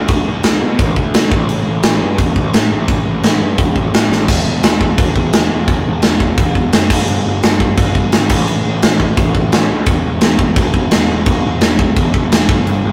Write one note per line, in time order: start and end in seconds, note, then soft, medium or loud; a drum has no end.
0.08 0.24 D2 loud
0.08 kick loud
0.08 crash medium
0.28 0.43 D2 loud
0.43 0.60 D2 loud
0.43 snare loud
0.43 crash medium
0.62 0.77 B2 loud
0.79 0.95 A1 medium
0.79 kick loud
0.79 crash medium
0.96 1.12 D2 medium
0.96 kick medium
1.14 1.30 D3 loud
1.14 snare loud
1.14 crash medium
1.31 1.47 A1 medium
1.31 kick loud
1.49 1.65 A1 medium
1.49 crash medium
1.67 1.82 A1 loud
1.83 1.99 A1 loud
1.83 snare loud
1.83 crash medium
2.03 2.18 G2 loud
2.18 2.34 E1 medium
2.18 kick loud
2.18 crash medium
2.36 2.52 A1 loud
2.36 kick medium
2.53 2.70 A2 loud
2.53 snare loud
2.53 crash medium
2.72 2.87 A1 medium
2.88 3.04 A1 loud
2.88 kick loud
2.88 crash medium
3.06 3.22 A1 loud
3.23 3.40 A1 medium
3.23 snare loud
3.23 crash medium
3.41 3.57 G2 medium
3.58 3.74 E1 medium
3.58 kick loud
3.58 crash medium
3.76 3.92 A1 loud
3.76 kick medium
3.93 4.09 A2 medium
3.93 snare loud
3.93 crash medium
4.10 4.26 A1 medium
4.10 snare medium
4.28 4.43 E1 loud
4.28 kick loud
4.28 crash loud
4.28 crash medium
4.46 4.61 E1 loud
4.63 4.93 E1 medium
4.63 snare loud
4.63 crash medium
4.81 kick medium
4.98 5.13 E1 medium
4.98 kick loud
4.98 crash medium
5.16 5.31 E1 medium
5.16 kick medium
5.33 5.48 E1 loud
5.33 snare loud
5.33 crash medium
5.51 5.66 E1 medium
5.68 5.83 E1 medium
5.68 kick loud
5.68 crash medium
5.87 6.01 E1 loud
6.02 6.34 E1 loud
6.02 snare loud
6.02 crash medium
6.20 kick medium
6.38 6.53 E1 medium
6.38 kick loud
6.38 crash medium
6.55 6.71 E1 loud
6.55 kick medium
6.73 6.88 F#1 loud
6.73 snare loud
6.73 crash medium
6.90 7.05 G1 medium
6.90 kick loud
6.90 crash loud
7.08 7.23 G1 loud
7.08 crash medium
7.26 7.41 G1 loud
7.43 7.73 G1 medium
7.43 snare loud
7.43 crash medium
7.60 kick medium
7.78 7.93 G1 medium
7.78 kick loud
7.78 crash medium
7.95 8.10 G1 loud
7.95 kick medium
8.12 8.28 G#1 loud
8.12 snare loud
8.12 crash medium
8.29 8.45 A1 loud
8.29 kick loud
8.29 crash loud
8.48 8.64 A1 loud
8.48 crash medium
8.67 8.81 A1 medium
8.82 9.13 A1 loud
8.82 snare loud
8.82 crash medium
9.00 kick medium
9.17 9.32 A1 loud
9.17 kick loud
9.17 crash medium
9.35 9.50 A1 loud
9.35 kick medium
9.52 9.68 A1 medium
9.52 snare loud
9.52 crash medium
9.70 9.85 D2 medium
9.86 10.02 E1 loud
9.86 kick loud
9.86 crash medium
10.06 10.20 E1 medium
10.21 10.52 E1 loud
10.21 snare loud
10.21 crash medium
10.39 kick medium
10.56 10.72 E1 medium
10.56 kick loud
10.56 crash medium
10.74 10.89 E1 loud
10.74 kick medium
10.91 11.08 E1 loud
10.91 snare loud
10.91 crash medium
11.10 11.25 E1 loud
11.26 11.42 E1 medium
11.26 kick loud
11.26 crash medium
11.45 11.60 E1 loud
11.61 11.92 E1 loud
11.61 snare loud
11.61 crash medium
11.79 kick loud
11.97 12.12 E1 loud
11.97 kick loud
11.97 crash medium
12.14 12.29 E1 medium
12.14 kick medium
12.31 12.46 E1 loud
12.31 snare loud
12.31 crash medium
12.49 12.64 G1 medium
12.49 kick loud
12.66 12.81 G1 loud
12.66 crash medium
12.84 12.92 G1 loud